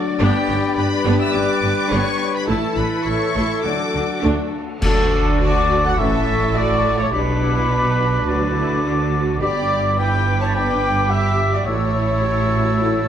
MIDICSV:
0, 0, Header, 1, 12, 480
1, 0, Start_track
1, 0, Key_signature, 2, "major"
1, 0, Tempo, 576369
1, 171, Time_signature, 4, 2, 24, 8
1, 5932, Tempo, 566038
1, 10984, End_track
2, 0, Start_track
2, 0, Title_t, "Oboe"
2, 0, Program_c, 0, 68
2, 0, Note_on_c, 0, 74, 86
2, 1834, Note_off_c, 0, 74, 0
2, 2074, Note_on_c, 0, 76, 69
2, 3031, Note_on_c, 0, 78, 65
2, 3044, Note_off_c, 0, 76, 0
2, 3773, Note_off_c, 0, 78, 0
2, 4016, Note_on_c, 0, 81, 78
2, 4467, Note_off_c, 0, 81, 0
2, 4502, Note_on_c, 0, 81, 72
2, 4970, Note_off_c, 0, 81, 0
2, 4980, Note_on_c, 0, 81, 80
2, 5914, Note_off_c, 0, 81, 0
2, 5939, Note_on_c, 0, 83, 81
2, 6909, Note_on_c, 0, 81, 74
2, 6922, Note_off_c, 0, 83, 0
2, 7865, Note_off_c, 0, 81, 0
2, 7870, Note_on_c, 0, 83, 62
2, 8342, Note_off_c, 0, 83, 0
2, 8361, Note_on_c, 0, 83, 63
2, 8827, Note_off_c, 0, 83, 0
2, 8833, Note_on_c, 0, 83, 67
2, 9537, Note_off_c, 0, 83, 0
2, 9788, Note_on_c, 0, 81, 70
2, 10984, Note_off_c, 0, 81, 0
2, 10984, End_track
3, 0, Start_track
3, 0, Title_t, "Violin section"
3, 0, Program_c, 1, 48
3, 177, Note_on_c, 1, 79, 99
3, 616, Note_off_c, 1, 79, 0
3, 642, Note_on_c, 1, 83, 97
3, 994, Note_off_c, 1, 83, 0
3, 1001, Note_on_c, 1, 88, 105
3, 1111, Note_on_c, 1, 86, 94
3, 1118, Note_off_c, 1, 88, 0
3, 1587, Note_on_c, 1, 85, 110
3, 1592, Note_off_c, 1, 86, 0
3, 1950, Note_off_c, 1, 85, 0
3, 1965, Note_on_c, 1, 83, 91
3, 2068, Note_on_c, 1, 81, 94
3, 2078, Note_off_c, 1, 83, 0
3, 2303, Note_on_c, 1, 83, 82
3, 2307, Note_off_c, 1, 81, 0
3, 2544, Note_on_c, 1, 85, 93
3, 2550, Note_off_c, 1, 83, 0
3, 3023, Note_on_c, 1, 86, 83
3, 3035, Note_off_c, 1, 85, 0
3, 3513, Note_off_c, 1, 86, 0
3, 4011, Note_on_c, 1, 69, 93
3, 4464, Note_off_c, 1, 69, 0
3, 4506, Note_on_c, 1, 74, 83
3, 4862, Note_off_c, 1, 74, 0
3, 4867, Note_on_c, 1, 78, 86
3, 4980, Note_off_c, 1, 78, 0
3, 4982, Note_on_c, 1, 76, 87
3, 5458, Note_off_c, 1, 76, 0
3, 5464, Note_on_c, 1, 74, 81
3, 5818, Note_off_c, 1, 74, 0
3, 5818, Note_on_c, 1, 73, 75
3, 5935, Note_off_c, 1, 73, 0
3, 5963, Note_on_c, 1, 71, 81
3, 7606, Note_off_c, 1, 71, 0
3, 7869, Note_on_c, 1, 74, 80
3, 8318, Note_off_c, 1, 74, 0
3, 8360, Note_on_c, 1, 79, 78
3, 8709, Note_off_c, 1, 79, 0
3, 8720, Note_on_c, 1, 81, 78
3, 8766, Note_off_c, 1, 81, 0
3, 8832, Note_on_c, 1, 79, 76
3, 9298, Note_off_c, 1, 79, 0
3, 9308, Note_on_c, 1, 76, 78
3, 9658, Note_off_c, 1, 76, 0
3, 9664, Note_on_c, 1, 74, 58
3, 9780, Note_on_c, 1, 73, 76
3, 9781, Note_off_c, 1, 74, 0
3, 10984, Note_off_c, 1, 73, 0
3, 10984, End_track
4, 0, Start_track
4, 0, Title_t, "Flute section"
4, 0, Program_c, 2, 73
4, 161, Note_on_c, 2, 67, 86
4, 607, Note_off_c, 2, 67, 0
4, 629, Note_on_c, 2, 71, 82
4, 990, Note_on_c, 2, 76, 80
4, 994, Note_off_c, 2, 71, 0
4, 1112, Note_on_c, 2, 74, 83
4, 1113, Note_off_c, 2, 76, 0
4, 1582, Note_on_c, 2, 73, 82
4, 1583, Note_off_c, 2, 74, 0
4, 1947, Note_off_c, 2, 73, 0
4, 1950, Note_on_c, 2, 71, 68
4, 2064, Note_on_c, 2, 69, 74
4, 2072, Note_off_c, 2, 71, 0
4, 2303, Note_on_c, 2, 71, 77
4, 2304, Note_off_c, 2, 69, 0
4, 2540, Note_on_c, 2, 73, 80
4, 2546, Note_off_c, 2, 71, 0
4, 3024, Note_off_c, 2, 73, 0
4, 3030, Note_on_c, 2, 74, 80
4, 3517, Note_off_c, 2, 74, 0
4, 4028, Note_on_c, 2, 86, 71
4, 4473, Note_off_c, 2, 86, 0
4, 4499, Note_on_c, 2, 86, 71
4, 4968, Note_off_c, 2, 86, 0
4, 4977, Note_on_c, 2, 85, 77
4, 5931, Note_off_c, 2, 85, 0
4, 5933, Note_on_c, 2, 86, 74
4, 6882, Note_off_c, 2, 86, 0
4, 6910, Note_on_c, 2, 86, 75
4, 7851, Note_off_c, 2, 86, 0
4, 7877, Note_on_c, 2, 86, 65
4, 8346, Note_off_c, 2, 86, 0
4, 8359, Note_on_c, 2, 86, 61
4, 8826, Note_off_c, 2, 86, 0
4, 8840, Note_on_c, 2, 86, 77
4, 9769, Note_off_c, 2, 86, 0
4, 9789, Note_on_c, 2, 88, 72
4, 10984, Note_off_c, 2, 88, 0
4, 10984, End_track
5, 0, Start_track
5, 0, Title_t, "Trumpet section"
5, 0, Program_c, 3, 61
5, 172, Note_on_c, 3, 71, 76
5, 2042, Note_off_c, 3, 71, 0
5, 2071, Note_on_c, 3, 69, 72
5, 3743, Note_off_c, 3, 69, 0
5, 4015, Note_on_c, 3, 69, 98
5, 4466, Note_off_c, 3, 69, 0
5, 4497, Note_on_c, 3, 74, 98
5, 4858, Note_off_c, 3, 74, 0
5, 4865, Note_on_c, 3, 78, 92
5, 4979, Note_off_c, 3, 78, 0
5, 4980, Note_on_c, 3, 76, 97
5, 5447, Note_off_c, 3, 76, 0
5, 5456, Note_on_c, 3, 74, 102
5, 5813, Note_on_c, 3, 73, 95
5, 5814, Note_off_c, 3, 74, 0
5, 5867, Note_off_c, 3, 73, 0
5, 5931, Note_on_c, 3, 71, 88
5, 7590, Note_off_c, 3, 71, 0
5, 7868, Note_on_c, 3, 74, 93
5, 8317, Note_off_c, 3, 74, 0
5, 8355, Note_on_c, 3, 79, 92
5, 8707, Note_off_c, 3, 79, 0
5, 8721, Note_on_c, 3, 81, 78
5, 8832, Note_on_c, 3, 79, 87
5, 8834, Note_off_c, 3, 81, 0
5, 9298, Note_off_c, 3, 79, 0
5, 9304, Note_on_c, 3, 76, 106
5, 9662, Note_off_c, 3, 76, 0
5, 9672, Note_on_c, 3, 74, 85
5, 9782, Note_on_c, 3, 73, 79
5, 9787, Note_off_c, 3, 74, 0
5, 10984, Note_off_c, 3, 73, 0
5, 10984, End_track
6, 0, Start_track
6, 0, Title_t, "Clarinet"
6, 0, Program_c, 4, 71
6, 168, Note_on_c, 4, 71, 72
6, 2073, Note_on_c, 4, 69, 70
6, 2086, Note_off_c, 4, 71, 0
6, 3778, Note_off_c, 4, 69, 0
6, 4022, Note_on_c, 4, 66, 68
6, 4469, Note_off_c, 4, 66, 0
6, 4502, Note_on_c, 4, 66, 82
6, 4979, Note_on_c, 4, 64, 76
6, 4991, Note_off_c, 4, 66, 0
6, 5922, Note_off_c, 4, 64, 0
6, 5927, Note_on_c, 4, 67, 65
6, 6896, Note_on_c, 4, 66, 70
6, 6909, Note_off_c, 4, 67, 0
6, 7863, Note_off_c, 4, 66, 0
6, 7877, Note_on_c, 4, 67, 61
6, 8346, Note_off_c, 4, 67, 0
6, 8361, Note_on_c, 4, 67, 73
6, 8823, Note_off_c, 4, 67, 0
6, 8828, Note_on_c, 4, 67, 69
6, 9534, Note_off_c, 4, 67, 0
6, 9779, Note_on_c, 4, 64, 62
6, 10984, Note_off_c, 4, 64, 0
6, 10984, End_track
7, 0, Start_track
7, 0, Title_t, "Violin section"
7, 0, Program_c, 5, 48
7, 0, Note_on_c, 5, 66, 75
7, 0, Note_on_c, 5, 74, 68
7, 174, Note_off_c, 5, 66, 0
7, 177, Note_on_c, 5, 67, 75
7, 2045, Note_off_c, 5, 67, 0
7, 2070, Note_off_c, 5, 74, 0
7, 2079, Note_on_c, 5, 64, 68
7, 2081, Note_on_c, 5, 69, 64
7, 3025, Note_off_c, 5, 64, 0
7, 3037, Note_on_c, 5, 66, 58
7, 3822, Note_off_c, 5, 69, 0
7, 3849, Note_off_c, 5, 66, 0
7, 4016, Note_on_c, 5, 62, 80
7, 4467, Note_off_c, 5, 62, 0
7, 4509, Note_on_c, 5, 66, 92
7, 4864, Note_off_c, 5, 66, 0
7, 4864, Note_on_c, 5, 69, 79
7, 4911, Note_off_c, 5, 69, 0
7, 4976, Note_on_c, 5, 69, 91
7, 5445, Note_off_c, 5, 69, 0
7, 5464, Note_on_c, 5, 66, 79
7, 5818, Note_off_c, 5, 66, 0
7, 5827, Note_on_c, 5, 64, 71
7, 5939, Note_off_c, 5, 64, 0
7, 5946, Note_on_c, 5, 62, 76
7, 7597, Note_off_c, 5, 62, 0
7, 7868, Note_on_c, 5, 67, 81
7, 8317, Note_off_c, 5, 67, 0
7, 8361, Note_on_c, 5, 71, 75
7, 8710, Note_off_c, 5, 71, 0
7, 8718, Note_on_c, 5, 73, 75
7, 8834, Note_off_c, 5, 73, 0
7, 8838, Note_on_c, 5, 71, 81
7, 9311, Note_off_c, 5, 71, 0
7, 9314, Note_on_c, 5, 67, 81
7, 9667, Note_off_c, 5, 67, 0
7, 9669, Note_on_c, 5, 66, 58
7, 9779, Note_on_c, 5, 64, 71
7, 9783, Note_off_c, 5, 66, 0
7, 10984, Note_off_c, 5, 64, 0
7, 10984, End_track
8, 0, Start_track
8, 0, Title_t, "Viola section"
8, 0, Program_c, 6, 48
8, 167, Note_on_c, 6, 59, 85
8, 168, Note_on_c, 6, 62, 93
8, 390, Note_off_c, 6, 59, 0
8, 391, Note_off_c, 6, 62, 0
8, 408, Note_on_c, 6, 61, 60
8, 409, Note_on_c, 6, 59, 63
8, 474, Note_off_c, 6, 61, 0
8, 476, Note_off_c, 6, 59, 0
8, 649, Note_on_c, 6, 59, 61
8, 650, Note_on_c, 6, 62, 59
8, 715, Note_off_c, 6, 59, 0
8, 717, Note_off_c, 6, 62, 0
8, 882, Note_on_c, 6, 59, 88
8, 882, Note_on_c, 6, 62, 80
8, 1104, Note_off_c, 6, 59, 0
8, 1104, Note_off_c, 6, 62, 0
8, 1118, Note_on_c, 6, 59, 63
8, 1121, Note_on_c, 6, 61, 60
8, 1185, Note_off_c, 6, 59, 0
8, 1187, Note_off_c, 6, 61, 0
8, 1362, Note_on_c, 6, 62, 64
8, 1363, Note_on_c, 6, 59, 55
8, 1428, Note_off_c, 6, 62, 0
8, 1430, Note_off_c, 6, 59, 0
8, 1591, Note_on_c, 6, 62, 82
8, 1592, Note_on_c, 6, 59, 79
8, 1816, Note_off_c, 6, 59, 0
8, 1816, Note_off_c, 6, 62, 0
8, 2071, Note_on_c, 6, 57, 68
8, 2071, Note_on_c, 6, 64, 79
8, 2296, Note_off_c, 6, 57, 0
8, 2296, Note_off_c, 6, 64, 0
8, 2311, Note_on_c, 6, 62, 50
8, 2312, Note_on_c, 6, 57, 48
8, 2377, Note_off_c, 6, 62, 0
8, 2379, Note_off_c, 6, 57, 0
8, 2549, Note_on_c, 6, 64, 56
8, 2551, Note_on_c, 6, 57, 46
8, 2615, Note_off_c, 6, 64, 0
8, 2618, Note_off_c, 6, 57, 0
8, 2799, Note_on_c, 6, 57, 63
8, 2800, Note_on_c, 6, 64, 68
8, 3021, Note_off_c, 6, 57, 0
8, 3025, Note_off_c, 6, 64, 0
8, 3031, Note_on_c, 6, 57, 51
8, 3033, Note_on_c, 6, 61, 47
8, 3098, Note_off_c, 6, 57, 0
8, 3100, Note_off_c, 6, 61, 0
8, 3276, Note_on_c, 6, 57, 54
8, 3282, Note_on_c, 6, 62, 55
8, 3343, Note_off_c, 6, 57, 0
8, 3348, Note_off_c, 6, 62, 0
8, 3519, Note_on_c, 6, 62, 70
8, 3521, Note_on_c, 6, 57, 80
8, 3754, Note_off_c, 6, 62, 0
8, 3755, Note_off_c, 6, 57, 0
8, 4019, Note_on_c, 6, 66, 81
8, 4243, Note_off_c, 6, 66, 0
8, 4259, Note_on_c, 6, 62, 81
8, 4979, Note_off_c, 6, 62, 0
8, 4979, Note_on_c, 6, 61, 69
8, 5447, Note_off_c, 6, 61, 0
8, 5455, Note_on_c, 6, 69, 82
8, 5922, Note_off_c, 6, 69, 0
8, 5929, Note_on_c, 6, 67, 76
8, 5997, Note_off_c, 6, 67, 0
8, 6178, Note_on_c, 6, 64, 70
8, 6413, Note_off_c, 6, 64, 0
8, 6420, Note_on_c, 6, 62, 60
8, 6903, Note_off_c, 6, 62, 0
8, 6908, Note_on_c, 6, 66, 68
8, 7142, Note_on_c, 6, 64, 68
8, 7146, Note_off_c, 6, 66, 0
8, 7378, Note_off_c, 6, 64, 0
8, 7392, Note_on_c, 6, 62, 68
8, 7459, Note_off_c, 6, 62, 0
8, 7632, Note_on_c, 6, 66, 68
8, 7865, Note_off_c, 6, 66, 0
8, 7874, Note_on_c, 6, 67, 72
8, 7942, Note_off_c, 6, 67, 0
8, 8113, Note_on_c, 6, 64, 67
8, 8819, Note_off_c, 6, 64, 0
8, 8838, Note_on_c, 6, 62, 60
8, 9311, Note_off_c, 6, 62, 0
8, 9311, Note_on_c, 6, 67, 80
8, 9776, Note_off_c, 6, 67, 0
8, 9789, Note_on_c, 6, 66, 70
8, 10023, Note_on_c, 6, 64, 68
8, 10024, Note_off_c, 6, 66, 0
8, 10255, Note_off_c, 6, 64, 0
8, 10265, Note_on_c, 6, 67, 74
8, 10499, Note_off_c, 6, 67, 0
8, 10506, Note_on_c, 6, 66, 62
8, 10984, Note_off_c, 6, 66, 0
8, 10984, End_track
9, 0, Start_track
9, 0, Title_t, "French horn section"
9, 0, Program_c, 7, 60
9, 0, Note_on_c, 7, 54, 81
9, 0, Note_on_c, 7, 62, 75
9, 153, Note_off_c, 7, 54, 0
9, 170, Note_on_c, 7, 55, 78
9, 2044, Note_off_c, 7, 62, 0
9, 2074, Note_off_c, 7, 55, 0
9, 2076, Note_on_c, 7, 64, 68
9, 2079, Note_on_c, 7, 52, 68
9, 3023, Note_off_c, 7, 64, 0
9, 3037, Note_on_c, 7, 54, 59
9, 3038, Note_on_c, 7, 62, 65
9, 3044, Note_off_c, 7, 52, 0
9, 3762, Note_off_c, 7, 54, 0
9, 3762, Note_off_c, 7, 62, 0
9, 4024, Note_on_c, 7, 54, 66
9, 4027, Note_on_c, 7, 62, 72
9, 4191, Note_off_c, 7, 54, 0
9, 4193, Note_off_c, 7, 62, 0
9, 4982, Note_on_c, 7, 52, 71
9, 4987, Note_on_c, 7, 61, 68
9, 5148, Note_off_c, 7, 52, 0
9, 5151, Note_off_c, 7, 61, 0
9, 5941, Note_on_c, 7, 55, 70
9, 5943, Note_on_c, 7, 62, 71
9, 6106, Note_off_c, 7, 55, 0
9, 6108, Note_off_c, 7, 62, 0
9, 6916, Note_on_c, 7, 62, 66
9, 6922, Note_on_c, 7, 54, 67
9, 7079, Note_off_c, 7, 62, 0
9, 7083, Note_off_c, 7, 54, 0
9, 7873, Note_on_c, 7, 59, 66
9, 7879, Note_on_c, 7, 62, 64
9, 8039, Note_off_c, 7, 59, 0
9, 8043, Note_off_c, 7, 62, 0
9, 8853, Note_on_c, 7, 62, 62
9, 8854, Note_on_c, 7, 59, 64
9, 9012, Note_off_c, 7, 62, 0
9, 9013, Note_off_c, 7, 59, 0
9, 9790, Note_on_c, 7, 57, 64
9, 9792, Note_on_c, 7, 64, 65
9, 9953, Note_off_c, 7, 57, 0
9, 9955, Note_off_c, 7, 64, 0
9, 10752, Note_on_c, 7, 57, 64
9, 10753, Note_on_c, 7, 64, 67
9, 10911, Note_off_c, 7, 57, 0
9, 10912, Note_off_c, 7, 64, 0
9, 10984, End_track
10, 0, Start_track
10, 0, Title_t, "Cello section"
10, 0, Program_c, 8, 48
10, 170, Note_on_c, 8, 43, 87
10, 237, Note_off_c, 8, 43, 0
10, 408, Note_on_c, 8, 43, 65
10, 474, Note_off_c, 8, 43, 0
10, 645, Note_on_c, 8, 43, 66
10, 712, Note_off_c, 8, 43, 0
10, 883, Note_on_c, 8, 43, 89
10, 950, Note_off_c, 8, 43, 0
10, 1120, Note_on_c, 8, 43, 57
10, 1187, Note_off_c, 8, 43, 0
10, 1359, Note_on_c, 8, 43, 59
10, 1426, Note_off_c, 8, 43, 0
10, 1594, Note_on_c, 8, 43, 77
10, 1661, Note_off_c, 8, 43, 0
10, 2074, Note_on_c, 8, 45, 71
10, 2141, Note_off_c, 8, 45, 0
10, 2321, Note_on_c, 8, 45, 58
10, 2388, Note_off_c, 8, 45, 0
10, 2556, Note_on_c, 8, 45, 59
10, 2623, Note_off_c, 8, 45, 0
10, 2795, Note_on_c, 8, 45, 66
10, 2862, Note_off_c, 8, 45, 0
10, 3039, Note_on_c, 8, 50, 51
10, 3106, Note_off_c, 8, 50, 0
10, 3284, Note_on_c, 8, 50, 55
10, 3351, Note_off_c, 8, 50, 0
10, 3526, Note_on_c, 8, 50, 67
10, 3592, Note_off_c, 8, 50, 0
10, 4016, Note_on_c, 8, 50, 75
10, 4944, Note_off_c, 8, 50, 0
10, 4974, Note_on_c, 8, 45, 71
10, 5930, Note_off_c, 8, 45, 0
10, 5935, Note_on_c, 8, 47, 70
10, 6883, Note_off_c, 8, 47, 0
10, 6906, Note_on_c, 8, 50, 66
10, 7849, Note_off_c, 8, 50, 0
10, 7867, Note_on_c, 8, 43, 62
10, 9784, Note_off_c, 8, 43, 0
10, 9786, Note_on_c, 8, 45, 68
10, 10984, Note_off_c, 8, 45, 0
10, 10984, End_track
11, 0, Start_track
11, 0, Title_t, "Double bass section"
11, 0, Program_c, 10, 48
11, 166, Note_on_c, 10, 31, 91
11, 233, Note_off_c, 10, 31, 0
11, 407, Note_on_c, 10, 31, 65
11, 474, Note_off_c, 10, 31, 0
11, 641, Note_on_c, 10, 31, 67
11, 707, Note_off_c, 10, 31, 0
11, 876, Note_on_c, 10, 31, 77
11, 943, Note_off_c, 10, 31, 0
11, 1117, Note_on_c, 10, 31, 58
11, 1183, Note_off_c, 10, 31, 0
11, 1355, Note_on_c, 10, 31, 59
11, 1422, Note_off_c, 10, 31, 0
11, 1592, Note_on_c, 10, 31, 89
11, 1659, Note_off_c, 10, 31, 0
11, 2068, Note_on_c, 10, 33, 83
11, 2135, Note_off_c, 10, 33, 0
11, 2308, Note_on_c, 10, 33, 66
11, 2374, Note_off_c, 10, 33, 0
11, 2552, Note_on_c, 10, 33, 60
11, 2619, Note_off_c, 10, 33, 0
11, 2792, Note_on_c, 10, 33, 66
11, 2859, Note_off_c, 10, 33, 0
11, 3039, Note_on_c, 10, 38, 46
11, 3106, Note_off_c, 10, 38, 0
11, 3281, Note_on_c, 10, 38, 56
11, 3348, Note_off_c, 10, 38, 0
11, 3530, Note_on_c, 10, 38, 77
11, 3596, Note_off_c, 10, 38, 0
11, 4018, Note_on_c, 10, 38, 81
11, 4945, Note_off_c, 10, 38, 0
11, 4983, Note_on_c, 10, 33, 70
11, 5933, Note_on_c, 10, 35, 75
11, 5934, Note_off_c, 10, 33, 0
11, 6882, Note_off_c, 10, 35, 0
11, 6903, Note_on_c, 10, 38, 64
11, 7847, Note_off_c, 10, 38, 0
11, 7870, Note_on_c, 10, 31, 76
11, 9785, Note_off_c, 10, 31, 0
11, 9785, Note_on_c, 10, 33, 80
11, 10984, Note_off_c, 10, 33, 0
11, 10984, End_track
12, 0, Start_track
12, 0, Title_t, "Drums"
12, 4015, Note_on_c, 9, 35, 80
12, 4015, Note_on_c, 9, 49, 74
12, 4099, Note_off_c, 9, 35, 0
12, 4099, Note_off_c, 9, 49, 0
12, 10984, End_track
0, 0, End_of_file